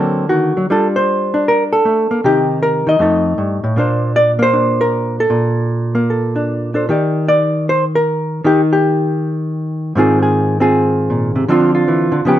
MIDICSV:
0, 0, Header, 1, 2, 480
1, 0, Start_track
1, 0, Key_signature, -2, "major"
1, 0, Tempo, 392157
1, 859, Time_signature, 4, 2, 24, 8
1, 1813, Tempo, 382409
1, 6613, Tempo, 393443
1, 8541, Key_signature, -3, "major"
1, 9973, Tempo, 382166
1, 15417, End_track
2, 0, Start_track
2, 0, Title_t, "Hollow-body jazz guitar"
2, 0, Program_c, 0, 26
2, 0, Note_on_c, 0, 50, 50
2, 0, Note_on_c, 0, 54, 40
2, 0, Note_on_c, 0, 58, 38
2, 0, Note_on_c, 0, 60, 35
2, 0, Note_on_c, 0, 69, 36
2, 354, Note_off_c, 0, 60, 0
2, 359, Note_on_c, 0, 66, 62
2, 360, Note_off_c, 0, 54, 0
2, 365, Note_on_c, 0, 51, 47
2, 686, Note_off_c, 0, 51, 0
2, 697, Note_on_c, 0, 54, 50
2, 832, Note_off_c, 0, 50, 0
2, 851, Note_off_c, 0, 66, 0
2, 853, Note_off_c, 0, 54, 0
2, 854, Note_off_c, 0, 69, 0
2, 857, Note_on_c, 0, 55, 57
2, 858, Note_off_c, 0, 58, 0
2, 863, Note_on_c, 0, 62, 35
2, 870, Note_on_c, 0, 65, 38
2, 881, Note_on_c, 0, 69, 64
2, 1063, Note_off_c, 0, 69, 0
2, 1175, Note_on_c, 0, 72, 71
2, 1624, Note_off_c, 0, 62, 0
2, 1639, Note_on_c, 0, 62, 54
2, 1809, Note_off_c, 0, 72, 0
2, 1814, Note_on_c, 0, 70, 79
2, 2001, Note_off_c, 0, 70, 0
2, 2119, Note_on_c, 0, 69, 81
2, 2274, Note_off_c, 0, 55, 0
2, 2279, Note_on_c, 0, 57, 48
2, 2596, Note_off_c, 0, 57, 0
2, 2601, Note_on_c, 0, 58, 52
2, 2746, Note_off_c, 0, 62, 0
2, 2756, Note_off_c, 0, 65, 0
2, 2768, Note_on_c, 0, 48, 62
2, 2769, Note_off_c, 0, 69, 0
2, 2770, Note_off_c, 0, 58, 0
2, 2775, Note_on_c, 0, 51, 43
2, 2780, Note_on_c, 0, 63, 41
2, 2787, Note_on_c, 0, 67, 80
2, 3244, Note_off_c, 0, 67, 0
2, 3249, Note_on_c, 0, 70, 84
2, 3539, Note_off_c, 0, 51, 0
2, 3554, Note_on_c, 0, 51, 57
2, 3560, Note_off_c, 0, 48, 0
2, 3577, Note_on_c, 0, 75, 81
2, 3708, Note_on_c, 0, 41, 61
2, 3714, Note_off_c, 0, 63, 0
2, 3716, Note_off_c, 0, 51, 0
2, 3722, Note_on_c, 0, 57, 40
2, 3728, Note_off_c, 0, 70, 0
2, 3735, Note_on_c, 0, 63, 39
2, 3743, Note_on_c, 0, 69, 40
2, 4190, Note_off_c, 0, 41, 0
2, 4195, Note_on_c, 0, 43, 53
2, 4513, Note_off_c, 0, 43, 0
2, 4518, Note_on_c, 0, 45, 56
2, 4670, Note_off_c, 0, 63, 0
2, 4677, Note_on_c, 0, 46, 58
2, 4685, Note_off_c, 0, 57, 0
2, 4686, Note_off_c, 0, 45, 0
2, 4690, Note_on_c, 0, 58, 47
2, 4695, Note_off_c, 0, 75, 0
2, 4701, Note_on_c, 0, 62, 42
2, 4714, Note_off_c, 0, 69, 0
2, 4714, Note_on_c, 0, 72, 47
2, 5171, Note_off_c, 0, 72, 0
2, 5176, Note_on_c, 0, 74, 96
2, 5361, Note_off_c, 0, 74, 0
2, 5457, Note_off_c, 0, 58, 0
2, 5462, Note_on_c, 0, 58, 62
2, 5508, Note_on_c, 0, 72, 88
2, 5640, Note_off_c, 0, 62, 0
2, 5645, Note_on_c, 0, 62, 40
2, 5989, Note_on_c, 0, 70, 75
2, 6458, Note_off_c, 0, 70, 0
2, 6459, Note_off_c, 0, 72, 0
2, 6483, Note_on_c, 0, 69, 75
2, 6590, Note_off_c, 0, 46, 0
2, 6605, Note_on_c, 0, 46, 63
2, 7392, Note_off_c, 0, 58, 0
2, 7397, Note_on_c, 0, 58, 58
2, 7569, Note_off_c, 0, 69, 0
2, 7584, Note_on_c, 0, 69, 40
2, 7891, Note_off_c, 0, 62, 0
2, 7896, Note_on_c, 0, 62, 39
2, 8351, Note_off_c, 0, 62, 0
2, 8360, Note_off_c, 0, 69, 0
2, 8366, Note_on_c, 0, 62, 40
2, 8375, Note_on_c, 0, 69, 39
2, 8389, Note_on_c, 0, 72, 35
2, 8517, Note_off_c, 0, 62, 0
2, 8518, Note_off_c, 0, 58, 0
2, 8521, Note_off_c, 0, 69, 0
2, 8528, Note_off_c, 0, 72, 0
2, 8537, Note_off_c, 0, 46, 0
2, 8544, Note_on_c, 0, 51, 60
2, 8554, Note_on_c, 0, 63, 38
2, 8559, Note_on_c, 0, 67, 39
2, 8570, Note_on_c, 0, 74, 40
2, 9013, Note_off_c, 0, 74, 0
2, 9028, Note_on_c, 0, 74, 85
2, 9504, Note_off_c, 0, 74, 0
2, 9525, Note_on_c, 0, 72, 83
2, 9704, Note_off_c, 0, 72, 0
2, 9819, Note_off_c, 0, 67, 0
2, 9845, Note_on_c, 0, 70, 80
2, 10443, Note_off_c, 0, 51, 0
2, 10457, Note_on_c, 0, 51, 62
2, 10461, Note_off_c, 0, 63, 0
2, 10466, Note_on_c, 0, 63, 45
2, 10473, Note_off_c, 0, 70, 0
2, 10481, Note_on_c, 0, 67, 80
2, 10661, Note_off_c, 0, 67, 0
2, 10810, Note_on_c, 0, 67, 70
2, 12349, Note_off_c, 0, 63, 0
2, 12353, Note_on_c, 0, 44, 67
2, 12354, Note_off_c, 0, 51, 0
2, 12369, Note_on_c, 0, 51, 55
2, 12379, Note_on_c, 0, 60, 57
2, 12383, Note_off_c, 0, 67, 0
2, 12388, Note_on_c, 0, 65, 54
2, 12399, Note_on_c, 0, 68, 66
2, 12678, Note_off_c, 0, 68, 0
2, 12693, Note_on_c, 0, 68, 54
2, 13154, Note_off_c, 0, 60, 0
2, 13159, Note_off_c, 0, 68, 0
2, 13169, Note_on_c, 0, 60, 60
2, 13174, Note_off_c, 0, 65, 0
2, 13179, Note_on_c, 0, 65, 57
2, 13185, Note_on_c, 0, 68, 70
2, 13791, Note_on_c, 0, 46, 55
2, 14107, Note_off_c, 0, 46, 0
2, 14113, Note_on_c, 0, 48, 61
2, 14249, Note_off_c, 0, 44, 0
2, 14265, Note_off_c, 0, 60, 0
2, 14270, Note_off_c, 0, 48, 0
2, 14270, Note_off_c, 0, 65, 0
2, 14272, Note_off_c, 0, 68, 0
2, 14275, Note_on_c, 0, 50, 71
2, 14277, Note_off_c, 0, 51, 0
2, 14283, Note_on_c, 0, 53, 56
2, 14297, Note_on_c, 0, 60, 55
2, 14301, Note_on_c, 0, 62, 52
2, 14315, Note_on_c, 0, 65, 58
2, 14590, Note_off_c, 0, 65, 0
2, 14605, Note_on_c, 0, 65, 55
2, 14764, Note_off_c, 0, 53, 0
2, 14772, Note_on_c, 0, 52, 57
2, 15055, Note_off_c, 0, 50, 0
2, 15070, Note_on_c, 0, 50, 58
2, 15085, Note_off_c, 0, 52, 0
2, 15232, Note_off_c, 0, 50, 0
2, 15237, Note_on_c, 0, 49, 67
2, 15240, Note_off_c, 0, 60, 0
2, 15240, Note_off_c, 0, 62, 0
2, 15253, Note_on_c, 0, 53, 52
2, 15257, Note_off_c, 0, 65, 0
2, 15257, Note_on_c, 0, 59, 53
2, 15267, Note_on_c, 0, 61, 56
2, 15277, Note_on_c, 0, 67, 63
2, 15417, Note_off_c, 0, 49, 0
2, 15417, Note_off_c, 0, 53, 0
2, 15417, Note_off_c, 0, 59, 0
2, 15417, Note_off_c, 0, 61, 0
2, 15417, Note_off_c, 0, 67, 0
2, 15417, End_track
0, 0, End_of_file